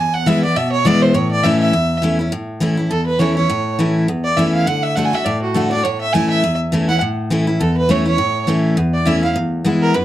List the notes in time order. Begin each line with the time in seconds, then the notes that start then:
Already playing: E2
0.00 G#5
0.14 F#5
0.26 E3 G#3 B3 E4 E5
0.43 B3 E4 D5
0.56 B2 E5
0.72 C#5
0.85 E3 G#3 B3 E4 D5
1.02 C5
1.14 A2 C#5
1.31 D5
1.43 E3 A3 C#4 E4 E5
1.60 E5
1.73 E2
2.02 E3 A3 C#4 E4
2.19 C#4 E4
2.32 A2
2.60 E3 A3 C#4 E4
2.77 C#4 E4
2.90 E2 A4
3.06 B4
3.19 E3 A3 C#4 E4 C#5
3.36 C#4 E4 C#5
3.50 A2
3.79 E3 A3 C#4 E4
4.08 E2
4.24 D5
4.37 E3 A3 C#4 E4 E5
4.54 F5
4.66 D3 F#5
4.83 E5
4.96 D3 A3 D4 F#4 F#5
5.05 G#5
5.13 D4 F#4 E5
5.25 A2 D5
5.42 F#4
5.54 D3 A3 D4 F#4 A4
5.71 D4 F#4 D5
5.84 A2 C#5
6.01 E5
6.13 E3 A3 C#4 E4 G#5
6.30 E5
6.44 E2
6.72 E3 A3 C#4 E4
6.88 C#4 E4 F#5
7.01 A2
7.30 E3 A3 C#4 E4
7.47 C#4 E4
7.60 E2 A4
7.77 B4
7.89 E3 A3 C#4 E4 C#5
8.06 C#4 E4 C#5
8.18 A2
8.47 E3 A3 C#4 E4
8.77 E2
8.94 D5
9.06 E3 A3 C#4 E4 E5
9.23 C#4 E4 F5
9.36 E2
9.65 E3 G#3 B3 E4
9.82 A#4
9.94 F#2 B4